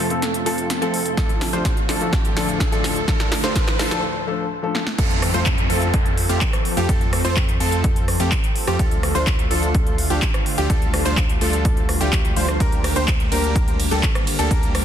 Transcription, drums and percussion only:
0.10 closed hi-hat soft
0.22 snare medium
0.22 closed hi-hat medium
0.34 closed hi-hat soft
0.46 open hi-hat loud
0.58 closed hi-hat soft
0.70 snare medium
0.70 closed hi-hat medium
0.82 closed hi-hat soft
0.94 open hi-hat medium
1.06 closed hi-hat soft
1.17 kick loud
1.17 snare medium
1.17 closed hi-hat medium
1.29 closed hi-hat soft
1.41 snare medium
1.41 open hi-hat loud
1.53 closed hi-hat soft
1.65 kick loud
1.65 snare medium
1.65 closed hi-hat medium
1.77 closed hi-hat soft
1.89 snare medium
1.89 open hi-hat medium
2.01 closed hi-hat soft
2.13 kick loud
2.13 snare medium
2.13 closed hi-hat medium
2.25 closed hi-hat soft
2.37 snare medium
2.37 open hi-hat loud
2.49 closed hi-hat soft
2.60 kick loud
2.60 snare medium
2.60 closed hi-hat medium
2.72 closed hi-hat soft
2.84 snare medium
2.84 open hi-hat loud
2.96 closed hi-hat soft
3.08 kick loud
3.08 snare medium
3.08 closed hi-hat medium
3.20 snare medium
3.20 closed hi-hat soft
3.32 snare medium
3.32 open hi-hat loud
3.44 snare medium
3.44 closed hi-hat soft
3.56 kick loud
3.56 snare loud
3.56 closed hi-hat medium
3.68 snare medium
3.68 closed hi-hat soft
3.79 snare loud
3.79 open hi-hat medium
3.91 snare medium
3.91 closed hi-hat soft
4.75 snare medium
4.87 snare medium
4.98 kick loud
4.98 closed hi-hat loud
4.98 crash loud
5.10 closed hi-hat soft
5.22 cross-stick medium
5.22 open hi-hat loud
5.34 closed hi-hat soft
5.46 kick loud
5.46 clap loud
5.46 closed hi-hat loud
5.58 closed hi-hat soft
5.70 open hi-hat medium
5.82 closed hi-hat soft
5.94 kick loud
5.94 closed hi-hat loud
6.06 closed hi-hat soft
6.17 open hi-hat loud
6.29 closed hi-hat soft
6.41 kick loud
6.41 clap loud
6.41 closed hi-hat medium
6.53 cross-stick medium
6.53 closed hi-hat soft
6.65 open hi-hat medium
6.77 closed hi-hat soft
6.89 kick loud
6.89 closed hi-hat medium
7.01 closed hi-hat soft
7.13 cross-stick medium
7.13 open hi-hat loud
7.25 closed hi-hat soft
7.37 kick loud
7.37 clap loud
7.37 closed hi-hat medium
7.49 closed hi-hat soft
7.60 open hi-hat loud
7.72 closed hi-hat soft
7.84 kick loud
7.84 closed hi-hat loud
7.96 closed hi-hat soft
8.08 cross-stick medium
8.08 open hi-hat loud
8.20 closed hi-hat soft
8.32 kick loud
8.32 clap loud
8.32 closed hi-hat medium
8.44 closed hi-hat soft
8.56 open hi-hat loud
8.67 cross-stick medium
8.67 closed hi-hat soft
8.79 kick loud
8.79 closed hi-hat medium
8.91 closed hi-hat soft
9.03 cross-stick medium
9.03 open hi-hat loud
9.15 closed hi-hat soft
9.27 kick loud
9.27 clap loud
9.27 closed hi-hat medium
9.39 closed hi-hat soft
9.51 open hi-hat loud
9.63 closed hi-hat soft
9.75 kick loud
9.75 closed hi-hat medium
9.87 closed hi-hat soft
9.98 open hi-hat loud
10.10 closed hi-hat soft
10.22 kick loud
10.22 clap loud
10.22 closed hi-hat medium
10.34 cross-stick medium
10.34 closed hi-hat soft
10.46 open hi-hat loud
10.58 closed hi-hat soft
10.70 kick loud
10.70 closed hi-hat medium
10.82 closed hi-hat soft
10.94 cross-stick medium
10.94 open hi-hat loud
11.06 closed hi-hat soft
11.17 kick loud
11.17 clap loud
11.17 closed hi-hat medium
11.29 closed hi-hat soft
11.41 open hi-hat loud
11.53 closed hi-hat soft
11.65 kick loud
11.65 closed hi-hat medium
11.77 closed hi-hat soft
11.89 cross-stick medium
11.89 open hi-hat loud
12.01 closed hi-hat soft
12.13 kick loud
12.13 clap loud
12.13 closed hi-hat medium
12.25 closed hi-hat soft
12.37 open hi-hat medium
12.48 cross-stick medium
12.48 closed hi-hat soft
12.60 kick loud
12.60 closed hi-hat medium
12.72 closed hi-hat soft
12.84 cross-stick medium
12.84 open hi-hat loud
12.84 ride medium
12.96 closed hi-hat soft
13.08 kick loud
13.08 clap loud
13.08 closed hi-hat medium
13.20 closed hi-hat soft
13.32 open hi-hat medium
13.32 ride medium
13.44 closed hi-hat soft
13.56 kick loud
13.56 closed hi-hat medium
13.68 closed hi-hat soft
13.80 open hi-hat loud
13.80 ride medium
13.92 closed hi-hat soft
14.03 kick loud
14.03 clap loud
14.03 closed hi-hat medium
14.15 cross-stick medium
14.15 closed hi-hat soft
14.27 open hi-hat medium
14.27 ride medium
14.39 closed hi-hat soft
14.51 kick loud
14.51 closed hi-hat medium
14.63 closed hi-hat soft
14.75 cross-stick medium
14.75 open hi-hat loud
14.75 ride medium

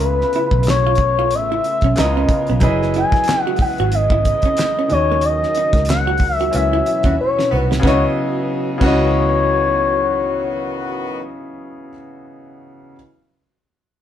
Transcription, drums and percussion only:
0.21 snare soft
0.33 closed hi-hat medium
0.51 kick loud
0.63 closed hi-hat medium
0.68 snare loud
0.68 clap medium
0.95 kick loud
0.95 closed hi-hat medium
1.31 closed hi-hat medium
1.64 closed hi-hat medium
1.81 kick medium
1.81 closed hi-hat soft
1.96 snare loud
1.96 clap medium
1.96 closed hi-hat medium
2.29 kick loud
2.29 closed hi-hat medium
2.47 closed hi-hat soft
2.60 kick loud
2.60 closed hi-hat medium
2.82 snare soft
2.94 closed hi-hat medium
3.12 kick loud
3.12 snare soft
3.12 closed hi-hat soft
3.24 closed hi-hat medium
3.29 snare loud
3.29 clap medium
3.56 kick loud
3.56 open hi-hat medium
3.78 closed hi-hat soft
3.92 closed hi-hat loud
4.10 kick loud
4.25 kick medium
4.25 closed hi-hat medium
4.42 kick medium
4.42 closed hi-hat soft
4.57 snare loud
4.57 clap medium
4.57 closed hi-hat medium
4.89 closed hi-hat medium
5.21 closed hi-hat medium
5.43 snare soft
5.55 closed hi-hat medium
5.73 kick loud
5.73 snare soft
5.73 closed hi-hat soft
5.85 closed hi-hat medium
5.90 snare loud
5.90 clap medium
6.17 kick medium
6.17 open hi-hat medium
6.40 closed hi-hat soft
6.53 closed hi-hat medium
6.86 closed hi-hat medium
7.03 kick loud
7.03 closed hi-hat soft
7.39 snare medium
7.72 snare loud
7.83 kick loud
7.83 snare medium
8.81 kick loud
8.81 crash medium

